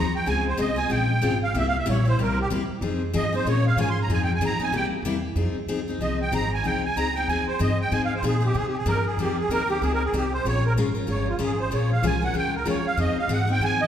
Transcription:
Already playing: upright bass D#2, accordion A#5
0.13 accordion G5, muted upright bass stroke
0.26 upright bass C#2, steel-string acoustic guitar C#3 G#3 C4 F4 G#4, accordion G#5
0.48 accordion C5
0.57 upright bass C2, steel-string acoustic guitar C#3 G#3 C4 F4 G#4, accordion D#5
0.76 steel-string acoustic guitar C4 F4 G#4, accordion G#5
0.89 upright bass A#1, steel-string acoustic guitar C#3 G#3 C4 F4 G#4, accordion G5
1.22 upright bass G#1, steel-string acoustic guitar C#3 G#3 C4 F4 G#4
1.43 accordion F5
1.54 upright bass C2, steel-string acoustic guitar C3 G3 A#3 E4 G4, accordion E5
1.68 accordion F5
1.79 accordion E5
1.86 upright bass A#1, steel-string acoustic guitar C3 G3 A#3 E4 G4
1.90 accordion C#5
2.05 steel-string acoustic guitar A#3 E4 G4, accordion C5
2.18 upright bass C2, steel-string acoustic guitar C3 G3 A#3 E4 G4
2.22 accordion A#4
2.41 accordion G4
2.50 upright bass C#2, steel-string acoustic guitar C3 G3 A#3 E4 G4
2.69 muted upright bass stroke
2.81 upright bass F2, steel-string acoustic guitar F3 C4 D#4 G#4
3.13 upright bass G2, steel-string acoustic guitar F3 C4 D#4 G#4, accordion D#5
3.33 steel-string acoustic guitar C4 D#4 G#4, accordion C5
3.45 upright bass A#2, steel-string acoustic guitar F3 G#3 C#4 F4 A#4, accordion C#5
3.67 accordion F5
3.76 upright bass G#2, steel-string acoustic guitar F3 G#3 C#4 F4 A#4, accordion G#5
3.90 accordion C6
4.02 accordion A#5
4.09 upright bass F2, steel-string acoustic guitar F3 C4 D#4 G#4
4.13 accordion G#5
4.24 accordion G5
4.35 accordion G#5
4.40 upright bass G2, steel-string acoustic guitar F3 C4 D#4 G#4
4.45 accordion A#5
4.59 steel-string acoustic guitar C4 D#4 G#4, muted upright bass stroke
4.63 accordion G#5
4.71 upright bass C2, steel-string acoustic guitar C3 G3 A#3 E4 G4
4.76 accordion G5
4.90 muted upright bass stroke
5.02 upright bass E2, steel-string acoustic guitar C3 G3 A#3 E4
5.07 steel-string acoustic guitar G4
5.35 upright bass F2, steel-string acoustic guitar F3 C4 D#4 G#4
5.54 muted upright bass stroke
5.66 upright bass C#2, steel-string acoustic guitar F3 C4 D#4 G#4
5.88 steel-string acoustic guitar C4 D#4 G#4
5.99 upright bass C2, steel-string acoustic guitar F3 C4 D#4 G#4, accordion D#5
6.22 accordion G5
6.31 upright bass G#1, steel-string acoustic guitar F3 C4 D#4 G#4, accordion A#5
6.54 accordion G#5
6.63 upright bass C2, steel-string acoustic guitar F3 C4 D#4 G#4, accordion G5
6.84 accordion G#5
6.96 upright bass C#2, steel-string acoustic guitar F3 C4 D#4 G#4, accordion A#5
7.15 steel-string acoustic guitar C4 D#4 G#4, accordion G5
7.27 upright bass D#2, steel-string acoustic guitar F3 C4 D#4 G#4, accordion G#5
7.47 accordion C5, muted upright bass stroke
7.59 upright bass G2, steel-string acoustic guitar F3 C4 D#4 G#4, accordion D#5
7.81 accordion G5
7.91 upright bass G#2, steel-string acoustic guitar F3 C4 D#4 G#4, accordion G#5
8.05 accordion F5
8.16 accordion C5
8.22 upright bass A#2, steel-string acoustic guitar F3 C4 D#4 G#4
8.27 accordion G#4
8.41 steel-string acoustic guitar C4 D#4 G#4
8.45 accordion G4
8.54 upright bass C3, steel-string acoustic guitar F3 C4 D#4 G#4, accordion G#4
8.68 accordion G4
8.77 accordion G#4
8.86 upright bass G2, steel-string acoustic guitar F3 C4 D#4 G#4, accordion A#4
9.07 accordion G#4
9.17 upright bass F2, steel-string acoustic guitar F3 C4 D#4 G#4, accordion G4
9.39 accordion G#4
9.49 upright bass D#2, steel-string acoustic guitar F3 C4 D#4 G#4, accordion A#4
9.68 steel-string acoustic guitar C4 D#4 G#4, accordion G4
9.81 upright bass C#2, steel-string acoustic guitar F3 C4 D#4 G#4, accordion G#4
9.94 accordion A#4
10.05 accordion G#4
10.12 upright bass C2, steel-string acoustic guitar F3 C4 D#4 G#4
10.17 accordion G4
10.34 accordion C5
10.44 upright bass A#1, steel-string acoustic guitar F3 G#3 C#4 F4 A#4, accordion C#5
10.66 accordion A#4
10.76 upright bass G#1, steel-string acoustic guitar F3 G#3 C#4 F4 A#4
10.95 steel-string acoustic guitar C#4 F4 A#4
11.07 upright bass G1, steel-string acoustic guitar F3 G#3 C#4 F4 A#4, accordion C#5
11.29 accordion F4
11.39 upright bass G#1, steel-string acoustic guitar F3 G#3 C#4 F4 A#4
11.43 accordion G#4
11.60 accordion C5
11.70 upright bass A#1, steel-string acoustic guitar F3 G#3 C#4 F4 A#4, accordion C#5
11.93 accordion F5
12.02 upright bass C2, steel-string acoustic guitar F3 G#3 C#4 F4 A#4, accordion G#5
12.22 steel-string acoustic guitar C#4 F4 A#4, accordion F#5
12.33 upright bass C#2, steel-string acoustic guitar F3 G#3 C#4 F4 A#4
12.38 accordion G5
12.56 accordion A#4
12.65 upright bass D#2, steel-string acoustic guitar F3 G#3 C#4 F4 A#4, accordion C#5
12.87 accordion F5
12.97 upright bass F2, steel-string acoustic guitar F3 C4 D#4 G#4, accordion D#5
13.15 accordion F5, muted upright bass stroke
13.28 upright bass G#2, steel-string acoustic guitar F3 C4 D#4 G#4
13.33 accordion F#5
13.47 steel-string acoustic guitar C4 D#4 G#4
13.52 accordion G5
13.60 upright bass D#3, steel-string acoustic guitar F3 C4 D#4 G#4
13.64 accordion G#5
13.82 accordion D#5

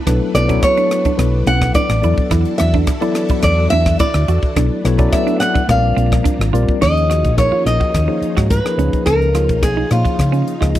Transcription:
Already playing: string machine A3 B3 D4
0.06 fingered electric bass B1, tine electric piano F#3 B3 E4 A4 B4, clean electric guitar D4, kick, cross-stick, closed hi-hat
0.34 fingered electric bass B1, tine electric piano F#3 B3 E4 A4 B4, nylon-string guitar D5, cross-stick, closed hi-hat
0.48 tine electric piano F#3 B3 E4 A4 C#5, clean electric guitar C#4, kick, closed hi-hat
0.63 nylon-string guitar C#5, kick, cross-stick, closed hi-hat
0.77 clean electric guitar D4, closed hi-hat
0.91 cross-stick, closed hi-hat
1.05 clean electric guitar D4, muted fingered electric bass stroke, kick, closed hi-hat
1.17 fingered electric bass B1, tine electric piano F#3 B3 E4 A4 B4, kick, cross-stick, closed hi-hat
1.46 fingered electric bass B1, clean electric guitar C#4, nylon-string guitar F#5, closed hi-hat
1.61 kick, cross-stick
1.74 clean electric guitar D4, nylon-string guitar D5, kick, closed hi-hat
1.89 fingered electric bass A1, cross-stick, closed hi-hat
2.02 fingered electric bass E2, string machine E3 E4 F#4 A4, tine electric piano F#3 B3 E4 A4 D5, clean electric guitar E4, closed hi-hat
2.18 kick
2.31 fingered electric bass E2, clean electric guitar E4, kick, cross-stick, closed hi-hat
2.45 closed hi-hat
2.58 fingered electric bass E2, nylon-string guitar E5, cross-stick, closed hi-hat
2.74 clean electric guitar D4, kick
2.87 kick, cross-stick, closed hi-hat
3.01 tine electric piano F#3 B3 E4 A4 D5, clean electric guitar E4, closed hi-hat
3.15 cross-stick, closed hi-hat
3.29 clean electric guitar E4, muted fingered electric bass stroke, kick, closed hi-hat
3.42 fingered electric bass E2, nylon-string guitar D5, kick, cross-stick, closed hi-hat
3.70 fingered electric bass E2, clean electric guitar D4, nylon-string guitar E5, closed hi-hat
3.86 kick, cross-stick
3.99 clean electric guitar E4, nylon-string guitar D5, kick, closed hi-hat
4.14 fingered electric bass D2, cross-stick, closed hi-hat
4.28 fingered electric bass E2, clean electric guitar F#4, closed hi-hat
4.43 kick
4.54 fingered electric bass B1, tine electric piano F#3 B3 E4 A4 D5, string machine A3 B3 D4, clean electric guitar D4, kick, cross-stick, closed hi-hat
4.84 fingered electric bass B1, tine electric piano F#3 B3 E4 A4 C#5, cross-stick, closed hi-hat
4.98 tine electric piano F#3 B3 E4 A4 D5, clean electric guitar C#4, kick, closed hi-hat
5.12 nylon-string guitar E5, kick, cross-stick, closed hi-hat
5.27 clean electric guitar D4, closed hi-hat
5.40 nylon-string guitar F#5, cross-stick, closed hi-hat
5.54 clean electric guitar D4, muted fingered electric bass stroke, kick, closed hi-hat
5.68 fingered electric bass A#1, string machine F3 A#3, tine electric piano G3 C4 F4 A#4 D5, nylon-string guitar F5, kick, cross-stick, closed hi-hat
5.97 fingered electric bass A#1, clean electric guitar C4, closed hi-hat
6.12 kick, cross-stick
6.24 clean electric guitar D4, kick, closed hi-hat
6.39 fingered electric bass G#1, cross-stick, closed hi-hat
6.53 fingered electric bass A#1, tine electric piano G3 C4 F4 A#4 D5, clean electric guitar F4, closed hi-hat
6.69 kick
6.80 fingered electric bass D#2, string machine D#3 C#4 D#4 F4, tine electric piano F3 A#3 D#4 G#4 C#5, clean electric guitar C#4, nylon-string guitar D#5, kick, cross-stick, crash
6.97 closed hi-hat
7.10 clean electric guitar F#4, cross-stick, closed hi-hat
7.24 fingered electric bass A#1, kick, closed hi-hat
7.37 tine electric piano F3 A#3 D#4 G#4 A#4, nylon-string guitar C#5, kick, cross-stick, closed hi-hat
7.52 clean electric guitar F4, muted fingered electric bass stroke
7.66 fingered electric bass A#1, nylon-string guitar D#5, cross-stick, closed hi-hat
7.80 clean electric guitar F#4, kick
7.94 fingered electric bass D#2, kick, cross-stick, closed hi-hat
8.08 tine electric piano F3 A#3 D#4 G#4 C#5, clean electric guitar D#4
8.22 muted fingered electric bass stroke, closed hi-hat
8.37 fingered electric bass G#2, clean electric guitar F#4, kick, cross-stick, closed hi-hat
8.50 nylon-string guitar B4, kick, closed hi-hat
8.65 tine electric piano F3 A#3 D#4 G#4 A#4, cross-stick
8.78 fingered electric bass C#2, string machine C#3 D#4 F4, tine electric piano F3 A#3 D#4 G#4 C#5, clean electric guitar C#4, closed hi-hat
8.93 kick, closed hi-hat
9.06 fingered electric bass C#2, clean electric guitar C#4, nylon-string guitar A#4, kick, cross-stick, closed hi-hat
9.22 closed hi-hat
9.34 tine electric piano F3 A#3 D#4 G#4 C#5, clean electric guitar F4, cross-stick, closed hi-hat
9.49 fingered electric bass B1, kick, closed hi-hat
9.63 nylon-string guitar G#4, kick, cross-stick, closed hi-hat
9.77 clean electric guitar D#4
9.91 fingered electric bass A#2, tine electric piano F3 A#3 D#4 G#4 C#5, nylon-string guitar F4, cross-stick, closed hi-hat
10.05 clean electric guitar F4, kick, closed hi-hat
10.19 fingered electric bass C#3, kick, cross-stick, closed hi-hat
10.32 clean electric guitar C#4, closed hi-hat
10.48 closed hi-hat
10.61 fingered electric bass C#2, tine electric piano F3 A#3 D#4 G#4 D#5, clean electric guitar F4, kick, cross-stick, closed hi-hat
10.75 kick, closed hi-hat

